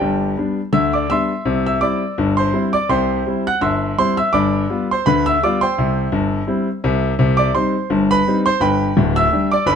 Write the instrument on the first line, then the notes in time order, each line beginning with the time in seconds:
grand piano
Already playing: G4 D5 G5
0.01 G1 G2
0.37 G3 B3 D4
0.72 D2 D3 E5 E6
0.93 D5 D6
1.10 G3 B3 D4 E5 C6 E6
1.45 C2 C3
1.66 E5 E6
1.81 G3 C4 E4 D5 D6
2.18 G1 G2
2.37 C5 C6
2.53 G3 C4 E4
2.73 D5 D6
2.89 C2 C3 C5 G5 C6
3.26 G3 C4 E4
3.47 F#5 F#6
3.61 G1 G2 E5 C6 E6
3.98 G3 C4 E4 C5 C6
4.17 E5 E6
4.33 G1 G2 D5 B5 D6
4.70 G3 B3 F4
4.91 C5 C6
5.06 D2 D3 B4 B5
5.26 E5 E6
5.43 G3 B3 F4 D5 D6
5.61 C5 G5 C6
5.78 C2 C3
6.12 G1 G2
6.47 G3 C4 E4
6.84 C2 C3
7.19 C2 C3
7.37 D5 D6
7.55 G3 C4 D#4 C5 C6
7.90 G1 G2
8.11 B4 B5
8.27 G3 C4 D#4
8.46 C5 C6
8.60 G1 G2 B4 G5 B5
8.97 D1 D2
9.16 E5 E6
9.33 G3 D4 G4
9.51 D5 D6
9.66 G1 G2 B4 B5